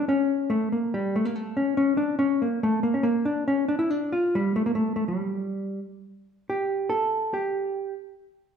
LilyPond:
\new Staff \with { instrumentName = "Hollow-body jazz guitar" } { \time 2/4 \tempo 4 = 140 cis'4 a8 bes8 | g8 a16 bes16 a8 cis'8 | cis'8 d'8 cis'8 bes8 | a8 bes16 cis'16 bes8 d'8 |
cis'8 d'16 e'16 d'8 f'8 | g8 a16 bes16 a8 a16 g16~ | g4. r8 | r4 g'4 |
a'4 g'4~ | g'8 r4. | }